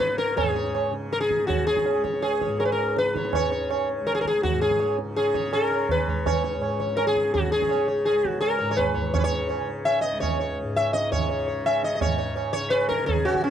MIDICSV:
0, 0, Header, 1, 4, 480
1, 0, Start_track
1, 0, Tempo, 367422
1, 493, Time_signature, 4, 2, 24, 8
1, 8647, Tempo, 358852
1, 17851, End_track
2, 0, Start_track
2, 0, Title_t, "Sitar"
2, 0, Program_c, 0, 104
2, 0, Note_on_c, 0, 71, 88
2, 231, Note_off_c, 0, 71, 0
2, 236, Note_on_c, 0, 70, 86
2, 476, Note_on_c, 0, 73, 32
2, 478, Note_off_c, 0, 70, 0
2, 483, Note_on_c, 0, 68, 70
2, 709, Note_off_c, 0, 73, 0
2, 723, Note_on_c, 0, 73, 32
2, 954, Note_off_c, 0, 73, 0
2, 975, Note_on_c, 0, 73, 36
2, 1163, Note_off_c, 0, 68, 0
2, 1201, Note_off_c, 0, 73, 0
2, 1471, Note_on_c, 0, 70, 84
2, 1569, Note_off_c, 0, 70, 0
2, 1574, Note_on_c, 0, 68, 83
2, 1915, Note_off_c, 0, 68, 0
2, 1921, Note_on_c, 0, 66, 76
2, 2172, Note_off_c, 0, 66, 0
2, 2178, Note_on_c, 0, 68, 86
2, 2630, Note_off_c, 0, 68, 0
2, 2663, Note_on_c, 0, 73, 33
2, 2889, Note_off_c, 0, 73, 0
2, 2905, Note_on_c, 0, 68, 72
2, 3153, Note_on_c, 0, 73, 36
2, 3375, Note_off_c, 0, 73, 0
2, 3389, Note_off_c, 0, 68, 0
2, 3394, Note_on_c, 0, 70, 72
2, 3460, Note_off_c, 0, 70, 0
2, 3465, Note_on_c, 0, 71, 65
2, 3543, Note_off_c, 0, 71, 0
2, 3555, Note_on_c, 0, 70, 74
2, 3887, Note_off_c, 0, 70, 0
2, 3899, Note_on_c, 0, 71, 80
2, 4136, Note_on_c, 0, 73, 36
2, 4348, Note_off_c, 0, 73, 0
2, 4377, Note_on_c, 0, 73, 83
2, 4379, Note_off_c, 0, 71, 0
2, 4580, Note_off_c, 0, 73, 0
2, 4595, Note_on_c, 0, 73, 36
2, 4817, Note_off_c, 0, 73, 0
2, 4840, Note_on_c, 0, 73, 35
2, 5059, Note_off_c, 0, 73, 0
2, 5312, Note_on_c, 0, 70, 87
2, 5412, Note_off_c, 0, 70, 0
2, 5417, Note_on_c, 0, 68, 85
2, 5494, Note_off_c, 0, 68, 0
2, 5500, Note_on_c, 0, 70, 70
2, 5579, Note_off_c, 0, 70, 0
2, 5584, Note_on_c, 0, 68, 90
2, 5786, Note_off_c, 0, 68, 0
2, 5791, Note_on_c, 0, 66, 81
2, 6013, Note_off_c, 0, 66, 0
2, 6028, Note_on_c, 0, 68, 79
2, 6266, Note_on_c, 0, 73, 31
2, 6472, Note_off_c, 0, 68, 0
2, 6489, Note_off_c, 0, 73, 0
2, 6747, Note_on_c, 0, 68, 77
2, 6979, Note_on_c, 0, 73, 37
2, 7203, Note_off_c, 0, 73, 0
2, 7222, Note_off_c, 0, 68, 0
2, 7227, Note_on_c, 0, 70, 82
2, 7459, Note_on_c, 0, 73, 32
2, 7681, Note_off_c, 0, 73, 0
2, 7715, Note_off_c, 0, 70, 0
2, 7725, Note_on_c, 0, 71, 76
2, 7953, Note_on_c, 0, 73, 34
2, 8166, Note_off_c, 0, 73, 0
2, 8186, Note_on_c, 0, 73, 73
2, 8201, Note_off_c, 0, 71, 0
2, 8402, Note_off_c, 0, 73, 0
2, 8418, Note_on_c, 0, 73, 34
2, 8636, Note_off_c, 0, 73, 0
2, 8654, Note_on_c, 0, 73, 34
2, 8870, Note_off_c, 0, 73, 0
2, 8886, Note_on_c, 0, 73, 33
2, 9113, Note_on_c, 0, 70, 100
2, 9114, Note_off_c, 0, 73, 0
2, 9244, Note_off_c, 0, 70, 0
2, 9250, Note_on_c, 0, 68, 77
2, 9604, Note_off_c, 0, 68, 0
2, 9610, Note_on_c, 0, 66, 75
2, 9846, Note_off_c, 0, 66, 0
2, 9851, Note_on_c, 0, 68, 79
2, 10080, Note_on_c, 0, 73, 33
2, 10306, Note_off_c, 0, 68, 0
2, 10316, Note_off_c, 0, 73, 0
2, 10334, Note_on_c, 0, 73, 34
2, 10564, Note_off_c, 0, 73, 0
2, 10566, Note_on_c, 0, 68, 69
2, 10861, Note_off_c, 0, 68, 0
2, 10861, Note_on_c, 0, 66, 69
2, 11026, Note_off_c, 0, 66, 0
2, 11036, Note_on_c, 0, 70, 81
2, 11279, Note_on_c, 0, 73, 35
2, 11428, Note_off_c, 0, 73, 0
2, 11444, Note_on_c, 0, 73, 64
2, 11472, Note_off_c, 0, 70, 0
2, 11519, Note_on_c, 0, 71, 81
2, 11537, Note_off_c, 0, 73, 0
2, 11756, Note_on_c, 0, 73, 36
2, 11983, Note_off_c, 0, 71, 0
2, 11998, Note_off_c, 0, 73, 0
2, 12015, Note_on_c, 0, 73, 84
2, 12078, Note_off_c, 0, 73, 0
2, 12083, Note_on_c, 0, 71, 71
2, 12146, Note_off_c, 0, 71, 0
2, 12152, Note_on_c, 0, 73, 100
2, 12469, Note_off_c, 0, 73, 0
2, 12485, Note_on_c, 0, 73, 38
2, 12724, Note_off_c, 0, 73, 0
2, 12971, Note_on_c, 0, 76, 97
2, 13180, Note_off_c, 0, 76, 0
2, 13186, Note_on_c, 0, 75, 78
2, 13434, Note_off_c, 0, 75, 0
2, 13440, Note_on_c, 0, 73, 65
2, 13680, Note_off_c, 0, 73, 0
2, 13704, Note_on_c, 0, 73, 36
2, 13933, Note_off_c, 0, 73, 0
2, 14192, Note_on_c, 0, 76, 90
2, 14411, Note_off_c, 0, 76, 0
2, 14416, Note_on_c, 0, 75, 86
2, 14661, Note_off_c, 0, 75, 0
2, 14666, Note_on_c, 0, 73, 68
2, 14888, Note_off_c, 0, 73, 0
2, 14904, Note_on_c, 0, 73, 36
2, 15131, Note_off_c, 0, 73, 0
2, 15146, Note_on_c, 0, 73, 31
2, 15372, Note_off_c, 0, 73, 0
2, 15389, Note_on_c, 0, 76, 93
2, 15630, Note_off_c, 0, 76, 0
2, 15635, Note_on_c, 0, 75, 80
2, 15767, Note_off_c, 0, 75, 0
2, 15783, Note_on_c, 0, 75, 52
2, 15861, Note_on_c, 0, 73, 37
2, 15862, Note_off_c, 0, 75, 0
2, 15868, Note_off_c, 0, 73, 0
2, 15868, Note_on_c, 0, 73, 78
2, 16069, Note_off_c, 0, 73, 0
2, 16085, Note_on_c, 0, 73, 39
2, 16306, Note_off_c, 0, 73, 0
2, 16322, Note_on_c, 0, 73, 40
2, 16537, Note_off_c, 0, 73, 0
2, 16553, Note_on_c, 0, 73, 99
2, 16785, Note_on_c, 0, 71, 100
2, 16788, Note_off_c, 0, 73, 0
2, 17025, Note_off_c, 0, 71, 0
2, 17030, Note_on_c, 0, 70, 91
2, 17259, Note_off_c, 0, 70, 0
2, 17265, Note_on_c, 0, 68, 92
2, 17500, Note_off_c, 0, 68, 0
2, 17517, Note_on_c, 0, 66, 90
2, 17761, Note_off_c, 0, 66, 0
2, 17766, Note_on_c, 0, 61, 72
2, 17851, Note_off_c, 0, 61, 0
2, 17851, End_track
3, 0, Start_track
3, 0, Title_t, "Tanpura"
3, 0, Program_c, 1, 104
3, 0, Note_on_c, 1, 37, 60
3, 0, Note_on_c, 1, 44, 64
3, 0, Note_on_c, 1, 49, 57
3, 500, Note_off_c, 1, 44, 0
3, 500, Note_on_c, 1, 44, 58
3, 1191, Note_off_c, 1, 49, 0
3, 1191, Note_on_c, 1, 49, 60
3, 1882, Note_off_c, 1, 49, 0
3, 1882, Note_on_c, 1, 49, 53
3, 2554, Note_off_c, 1, 37, 0
3, 2560, Note_on_c, 1, 37, 53
3, 3219, Note_off_c, 1, 44, 0
3, 3219, Note_on_c, 1, 44, 66
3, 3884, Note_off_c, 1, 49, 0
3, 3884, Note_on_c, 1, 49, 54
3, 4564, Note_off_c, 1, 49, 0
3, 4564, Note_on_c, 1, 49, 59
3, 5227, Note_off_c, 1, 37, 0
3, 5232, Note_on_c, 1, 37, 55
3, 5906, Note_off_c, 1, 44, 0
3, 5911, Note_on_c, 1, 44, 60
3, 6584, Note_off_c, 1, 49, 0
3, 6584, Note_on_c, 1, 49, 65
3, 7245, Note_off_c, 1, 49, 0
3, 7245, Note_on_c, 1, 49, 55
3, 7926, Note_off_c, 1, 37, 0
3, 7931, Note_on_c, 1, 37, 52
3, 8587, Note_off_c, 1, 44, 0
3, 8593, Note_on_c, 1, 44, 59
3, 9273, Note_off_c, 1, 49, 0
3, 9273, Note_on_c, 1, 49, 60
3, 9959, Note_off_c, 1, 49, 0
3, 9959, Note_on_c, 1, 49, 59
3, 10640, Note_off_c, 1, 37, 0
3, 10645, Note_on_c, 1, 37, 55
3, 11299, Note_off_c, 1, 44, 0
3, 11304, Note_on_c, 1, 44, 59
3, 11987, Note_off_c, 1, 49, 0
3, 11987, Note_on_c, 1, 49, 61
3, 12652, Note_off_c, 1, 49, 0
3, 12652, Note_on_c, 1, 49, 58
3, 13328, Note_off_c, 1, 37, 0
3, 13333, Note_on_c, 1, 37, 58
3, 14002, Note_off_c, 1, 44, 0
3, 14007, Note_on_c, 1, 44, 56
3, 14668, Note_off_c, 1, 49, 0
3, 14668, Note_on_c, 1, 49, 60
3, 15339, Note_off_c, 1, 49, 0
3, 15339, Note_on_c, 1, 49, 54
3, 15875, Note_off_c, 1, 44, 0
3, 15875, Note_on_c, 1, 44, 63
3, 16555, Note_off_c, 1, 49, 0
3, 16555, Note_on_c, 1, 49, 60
3, 17209, Note_off_c, 1, 49, 0
3, 17209, Note_on_c, 1, 49, 64
3, 17848, Note_off_c, 1, 37, 0
3, 17851, Note_off_c, 1, 44, 0
3, 17851, Note_off_c, 1, 49, 0
3, 17851, End_track
4, 0, Start_track
4, 0, Title_t, "Tabla"
4, 4, Note_on_c, 9, 37, 77
4, 135, Note_off_c, 9, 37, 0
4, 247, Note_on_c, 9, 62, 76
4, 377, Note_off_c, 9, 62, 0
4, 494, Note_on_c, 9, 60, 97
4, 494, Note_on_c, 9, 64, 89
4, 625, Note_off_c, 9, 60, 0
4, 625, Note_off_c, 9, 64, 0
4, 733, Note_on_c, 9, 62, 81
4, 864, Note_off_c, 9, 62, 0
4, 977, Note_on_c, 9, 60, 73
4, 1107, Note_off_c, 9, 60, 0
4, 1221, Note_on_c, 9, 62, 56
4, 1351, Note_off_c, 9, 62, 0
4, 1468, Note_on_c, 9, 62, 73
4, 1586, Note_off_c, 9, 62, 0
4, 1586, Note_on_c, 9, 62, 56
4, 1707, Note_on_c, 9, 37, 60
4, 1717, Note_off_c, 9, 62, 0
4, 1823, Note_on_c, 9, 62, 56
4, 1838, Note_off_c, 9, 37, 0
4, 1951, Note_on_c, 9, 63, 82
4, 1951, Note_on_c, 9, 64, 69
4, 1953, Note_off_c, 9, 62, 0
4, 2082, Note_off_c, 9, 63, 0
4, 2082, Note_off_c, 9, 64, 0
4, 2190, Note_on_c, 9, 60, 60
4, 2311, Note_on_c, 9, 37, 60
4, 2320, Note_off_c, 9, 60, 0
4, 2429, Note_on_c, 9, 60, 68
4, 2441, Note_off_c, 9, 37, 0
4, 2560, Note_off_c, 9, 60, 0
4, 2673, Note_on_c, 9, 37, 51
4, 2795, Note_on_c, 9, 62, 53
4, 2804, Note_off_c, 9, 37, 0
4, 2909, Note_on_c, 9, 60, 72
4, 2925, Note_off_c, 9, 62, 0
4, 3039, Note_off_c, 9, 60, 0
4, 3155, Note_on_c, 9, 37, 55
4, 3286, Note_off_c, 9, 37, 0
4, 3401, Note_on_c, 9, 60, 73
4, 3532, Note_off_c, 9, 60, 0
4, 3638, Note_on_c, 9, 60, 60
4, 3769, Note_off_c, 9, 60, 0
4, 3876, Note_on_c, 9, 62, 78
4, 4006, Note_off_c, 9, 62, 0
4, 4006, Note_on_c, 9, 62, 58
4, 4124, Note_on_c, 9, 37, 59
4, 4136, Note_off_c, 9, 62, 0
4, 4242, Note_on_c, 9, 62, 61
4, 4255, Note_off_c, 9, 37, 0
4, 4351, Note_on_c, 9, 60, 89
4, 4351, Note_on_c, 9, 64, 83
4, 4373, Note_off_c, 9, 62, 0
4, 4481, Note_off_c, 9, 60, 0
4, 4481, Note_off_c, 9, 64, 0
4, 4593, Note_on_c, 9, 62, 74
4, 4723, Note_off_c, 9, 62, 0
4, 4840, Note_on_c, 9, 60, 79
4, 4971, Note_off_c, 9, 60, 0
4, 5085, Note_on_c, 9, 62, 57
4, 5215, Note_off_c, 9, 62, 0
4, 5325, Note_on_c, 9, 60, 72
4, 5456, Note_off_c, 9, 60, 0
4, 5556, Note_on_c, 9, 37, 60
4, 5687, Note_off_c, 9, 37, 0
4, 5802, Note_on_c, 9, 63, 82
4, 5802, Note_on_c, 9, 64, 72
4, 5932, Note_off_c, 9, 63, 0
4, 5932, Note_off_c, 9, 64, 0
4, 6034, Note_on_c, 9, 60, 57
4, 6155, Note_on_c, 9, 37, 60
4, 6165, Note_off_c, 9, 60, 0
4, 6270, Note_on_c, 9, 60, 72
4, 6286, Note_off_c, 9, 37, 0
4, 6401, Note_off_c, 9, 60, 0
4, 6513, Note_on_c, 9, 62, 57
4, 6643, Note_off_c, 9, 62, 0
4, 6755, Note_on_c, 9, 60, 76
4, 6886, Note_off_c, 9, 60, 0
4, 6989, Note_on_c, 9, 37, 55
4, 7119, Note_off_c, 9, 37, 0
4, 7220, Note_on_c, 9, 60, 78
4, 7351, Note_off_c, 9, 60, 0
4, 7458, Note_on_c, 9, 60, 62
4, 7589, Note_off_c, 9, 60, 0
4, 7696, Note_on_c, 9, 60, 73
4, 7696, Note_on_c, 9, 64, 68
4, 7827, Note_off_c, 9, 60, 0
4, 7827, Note_off_c, 9, 64, 0
4, 7943, Note_on_c, 9, 64, 50
4, 8074, Note_off_c, 9, 64, 0
4, 8180, Note_on_c, 9, 60, 94
4, 8180, Note_on_c, 9, 64, 85
4, 8311, Note_off_c, 9, 60, 0
4, 8311, Note_off_c, 9, 64, 0
4, 8413, Note_on_c, 9, 62, 75
4, 8544, Note_off_c, 9, 62, 0
4, 8645, Note_on_c, 9, 60, 77
4, 8779, Note_off_c, 9, 60, 0
4, 8893, Note_on_c, 9, 37, 52
4, 9016, Note_on_c, 9, 62, 53
4, 9026, Note_off_c, 9, 37, 0
4, 9134, Note_on_c, 9, 60, 77
4, 9150, Note_off_c, 9, 62, 0
4, 9268, Note_off_c, 9, 60, 0
4, 9380, Note_on_c, 9, 37, 54
4, 9514, Note_off_c, 9, 37, 0
4, 9621, Note_on_c, 9, 63, 73
4, 9621, Note_on_c, 9, 64, 72
4, 9755, Note_off_c, 9, 63, 0
4, 9755, Note_off_c, 9, 64, 0
4, 9870, Note_on_c, 9, 60, 59
4, 9989, Note_on_c, 9, 37, 62
4, 10004, Note_off_c, 9, 60, 0
4, 10108, Note_on_c, 9, 60, 65
4, 10123, Note_off_c, 9, 37, 0
4, 10242, Note_off_c, 9, 60, 0
4, 10352, Note_on_c, 9, 62, 55
4, 10486, Note_off_c, 9, 62, 0
4, 10587, Note_on_c, 9, 60, 76
4, 10720, Note_off_c, 9, 60, 0
4, 10828, Note_on_c, 9, 37, 52
4, 10961, Note_off_c, 9, 37, 0
4, 11059, Note_on_c, 9, 60, 70
4, 11193, Note_off_c, 9, 60, 0
4, 11306, Note_on_c, 9, 60, 60
4, 11440, Note_off_c, 9, 60, 0
4, 11551, Note_on_c, 9, 60, 75
4, 11551, Note_on_c, 9, 64, 71
4, 11685, Note_off_c, 9, 60, 0
4, 11685, Note_off_c, 9, 64, 0
4, 11790, Note_on_c, 9, 64, 54
4, 11924, Note_off_c, 9, 64, 0
4, 12027, Note_on_c, 9, 60, 103
4, 12027, Note_on_c, 9, 64, 93
4, 12161, Note_off_c, 9, 60, 0
4, 12161, Note_off_c, 9, 64, 0
4, 12266, Note_on_c, 9, 62, 72
4, 12399, Note_off_c, 9, 62, 0
4, 12506, Note_on_c, 9, 60, 68
4, 12640, Note_off_c, 9, 60, 0
4, 12754, Note_on_c, 9, 62, 57
4, 12887, Note_off_c, 9, 62, 0
4, 12986, Note_on_c, 9, 60, 71
4, 13120, Note_off_c, 9, 60, 0
4, 13236, Note_on_c, 9, 62, 74
4, 13370, Note_off_c, 9, 62, 0
4, 13473, Note_on_c, 9, 60, 89
4, 13473, Note_on_c, 9, 64, 86
4, 13607, Note_off_c, 9, 60, 0
4, 13607, Note_off_c, 9, 64, 0
4, 14193, Note_on_c, 9, 60, 68
4, 14327, Note_off_c, 9, 60, 0
4, 14438, Note_on_c, 9, 62, 70
4, 14572, Note_off_c, 9, 62, 0
4, 14676, Note_on_c, 9, 60, 75
4, 14676, Note_on_c, 9, 64, 74
4, 14810, Note_off_c, 9, 60, 0
4, 14810, Note_off_c, 9, 64, 0
4, 15392, Note_on_c, 9, 60, 75
4, 15526, Note_off_c, 9, 60, 0
4, 15621, Note_on_c, 9, 62, 75
4, 15755, Note_off_c, 9, 62, 0
4, 15861, Note_on_c, 9, 60, 95
4, 15861, Note_on_c, 9, 64, 90
4, 15995, Note_off_c, 9, 60, 0
4, 15995, Note_off_c, 9, 64, 0
4, 16099, Note_on_c, 9, 62, 88
4, 16233, Note_off_c, 9, 62, 0
4, 16340, Note_on_c, 9, 60, 78
4, 16474, Note_off_c, 9, 60, 0
4, 16580, Note_on_c, 9, 62, 64
4, 16714, Note_off_c, 9, 62, 0
4, 16819, Note_on_c, 9, 60, 93
4, 16953, Note_off_c, 9, 60, 0
4, 17056, Note_on_c, 9, 37, 65
4, 17190, Note_off_c, 9, 37, 0
4, 17297, Note_on_c, 9, 63, 88
4, 17297, Note_on_c, 9, 64, 76
4, 17431, Note_off_c, 9, 63, 0
4, 17431, Note_off_c, 9, 64, 0
4, 17530, Note_on_c, 9, 60, 62
4, 17648, Note_on_c, 9, 37, 66
4, 17664, Note_off_c, 9, 60, 0
4, 17770, Note_on_c, 9, 60, 81
4, 17782, Note_off_c, 9, 37, 0
4, 17851, Note_off_c, 9, 60, 0
4, 17851, End_track
0, 0, End_of_file